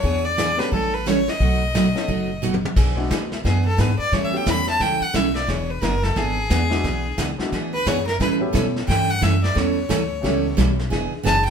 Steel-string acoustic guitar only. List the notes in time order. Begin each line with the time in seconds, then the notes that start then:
0.03 E3 B3 D4 G#4
0.37 E3 B3 D4 G#4
0.72 E3 G3 C#4 E4 A4
1.06 E3 G3 C#4 E4 A4
1.40 B2 F#3 A3 D#4 F#4
1.74 B2 F#3 A3 D#4 F#4
2.08 B2 F#3 A3 D#4 F#4
2.42 B2 F#3 A3 D#4 F#4
2.76 E3 B3 D4 G#4
3.10 E3 B3 D4 G#4
3.44 E3 B3 D4 G#4
3.77 E3 B3 D4 G#4
4.12 E3 G3 C#4 E4 A4
4.46 E3 G3 C#4 E4 A4
4.80 E3 G3 C#4 E4 A4
5.13 E3 G3 C#4 E4 A4
5.47 E3 B3 D4 G#4
5.82 E3 B3 D4 G#4
6.16 E3 B3 D4 G#4
6.50 E3 B3 D4 G#4
6.84 E3 B3 D4 G#4
7.18 E3 B3 D4 G#4
7.52 E3 B3 D4 G#4
7.86 E3 B3 D4 G#4
8.20 E3 G3 C#4 E4 A4
8.53 E3 G3 C#4 E4 A4
8.88 E3 G3 C#4 E4 A4
9.21 E3 G3 C#4 E4 A4
9.54 E3 G3 C#4 E4 A4
9.89 E3 G3 C#4 E4 A4
10.23 E3 G3 C#4 E4 A4
10.57 E3 G3 C#4 E4 A4
10.90 E3 B3 D4 G#4
11.23 E3 B3 D4 G#4